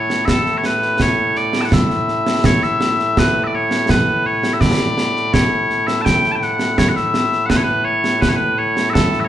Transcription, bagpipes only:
0.00 9.28 A2 medium
0.00 9.28 A3 medium
0.00 9.28 E4 medium
0.00 0.25 C#5 medium
0.25 0.57 A4 medium
0.25 0.29 E5 medium
0.57 0.65 C#5 medium
0.65 1.02 B4 medium
1.02 1.37 C#5 medium
1.37 1.61 D5 medium
1.61 1.73 F#5 medium
1.61 1.65 A5 medium
1.73 2.45 E5 medium
2.45 2.63 C#5 loud
2.63 3.19 E5 loud
3.19 3.44 B4 medium
3.44 3.54 D5 medium
3.44 3.47 E5 medium
3.54 3.90 C#5 loud
3.90 4.26 B4 medium
4.26 4.53 C#5 medium
4.53 4.61 E5 medium
4.61 5.33 D5 loud
5.33 5.87 C#5 loud
5.87 6.01 E5 loud
6.01 6.32 G5 loud
6.01 6.05 A5 loud
6.32 6.43 G5 medium
6.32 6.36 A5 medium
6.43 6.78 F#5 loud
6.78 6.89 C#5 loud
6.89 6.96 F#5 medium
6.96 7.46 E5 loud
7.46 7.57 B4 loud
7.46 7.50 F#5 loud
7.57 7.63 C#5 medium
7.63 7.85 B4 loud
7.84 8.21 C#5 medium
8.21 8.29 B4 medium
8.29 8.36 C#5 medium
8.36 8.58 B4 medium
8.58 8.90 C#5 medium
8.90 9.20 A4 loud
8.90 8.94 E5 loud
9.20 9.24 E5 medium
9.24 9.28 C#5 medium

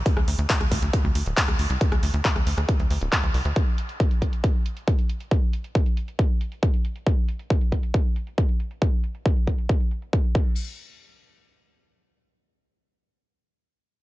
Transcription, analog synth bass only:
0.17 0.25 D2 medium
0.28 0.36 D2 loud
0.39 0.47 D2 medium
0.60 0.69 D2 medium
0.72 0.80 D2 loud
0.82 0.91 D2 loud
1.04 1.13 D2 medium
1.15 1.23 D2 loud
1.26 1.34 D1 medium
1.48 1.56 D2 medium
1.59 1.67 D2 loud
1.70 1.78 C2 medium
1.92 2.00 D2 medium
2.03 2.11 D2 loud
2.14 2.22 D2 medium
2.36 2.44 D2 medium
2.47 2.55 D2 loud
2.58 2.66 D2 loud
2.80 2.88 D2 medium
2.90 2.99 D2 loud
3.01 3.10 D1 medium
3.23 3.32 D2 medium
3.34 3.42 C2 loud
3.45 3.53 D2 medium

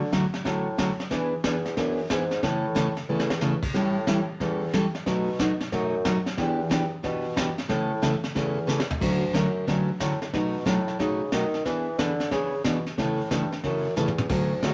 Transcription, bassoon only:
0.00 0.12 D3 medium
0.45 0.98 A2 medium
1.11 1.37 E3 medium
1.44 1.72 E2 loud
1.77 2.05 F#2 medium
2.10 2.38 G#2 medium
2.43 2.95 A2 loud
3.09 3.62 E2 medium
3.74 4.27 A2 medium
4.41 4.73 E2 medium
5.06 5.59 B2 medium
5.72 6.25 F#2 medium
6.38 6.91 E2 medium
7.04 7.56 B2 loud
7.70 8.22 A2 loud
8.36 8.88 E2 medium
9.01 9.33 D2 medium
9.34 9.66 F#2 medium
9.67 9.87 G2 medium
9.89 9.95 G2 soft
10.00 10.20 A2 medium
10.22 10.28 A2 soft
10.34 10.66 B2 medium
10.66 10.98 A2 medium
11.00 11.32 C#3 medium
11.33 11.65 D#3 loud
11.65 11.98 E3 medium
11.99 12.31 D3 loud
12.32 12.64 C#3 medium
12.65 12.85 B2 medium
12.98 13.30 A2 medium
13.31 13.51 G2 loud
13.52 13.58 G2 soft
13.64 13.96 F#2 medium
13.97 14.29 E2 medium
14.30 14.62 D2 medium
14.63 14.74 C#2 medium

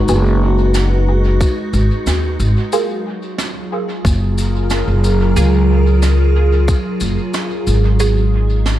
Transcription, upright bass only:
0.09 1.38 F#1 loud
1.73 1.89 G#1 medium
2.06 2.36 D#2 medium
2.40 2.55 G#1 medium
4.05 4.84 F#1 medium
4.88 5.33 F#1 medium
5.36 6.65 C#2 loud
7.01 7.16 F#1 medium
7.67 8.79 G#1 medium

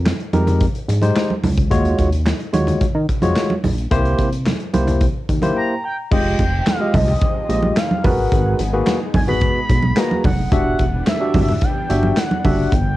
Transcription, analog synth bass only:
0.00 0.13 F2 loud
0.33 0.68 F2 medium
0.88 1.12 G#2 loud
1.43 1.73 C#2 medium
1.71 1.94 D#2 loud
1.99 2.34 D#2 medium
2.53 2.77 D#2 medium
2.81 2.87 D#3 soft
2.95 3.07 D#3 loud
3.22 3.34 F2 medium
3.63 3.87 A#1 medium
3.91 4.15 C2 loud
4.19 4.54 C2 loud
4.74 5.09 C2 medium
5.29 5.52 D#2 medium
6.12 6.35 F1 loud
6.39 6.62 F1 loud
6.94 7.17 C2 medium
7.49 7.72 A#1 loud
8.04 8.28 G#1 loud
8.32 8.55 G#1 loud
8.59 8.82 G#1 loud
9.14 9.49 G#1 medium
9.69 9.93 B1 loud
10.24 10.48 F1 loud
10.52 10.75 E1 loud
10.79 11.03 E1 medium
11.34 11.58 G#1 medium
11.89 12.13 G1 loud
12.45 12.68 F#1 medium
12.72 12.96 G1 loud

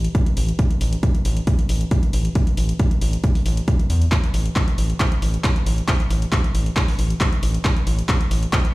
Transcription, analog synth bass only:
0.37 0.52 A1 loud
0.81 0.96 A1 loud
1.25 1.40 A1 loud
1.69 1.84 A1 medium
2.13 2.29 A1 medium
2.57 2.73 A1 loud
3.02 3.17 A1 loud
3.46 3.61 A1 medium
3.90 4.05 E2 medium
4.34 4.49 A1 loud
4.78 4.93 A1 loud
5.22 5.37 A1 medium
5.66 5.81 A1 loud
6.10 6.26 A1 loud
6.54 6.70 A1 loud
6.99 7.14 A1 medium
7.43 7.58 A1 loud
7.87 8.02 A1 loud
8.31 8.46 A1 loud

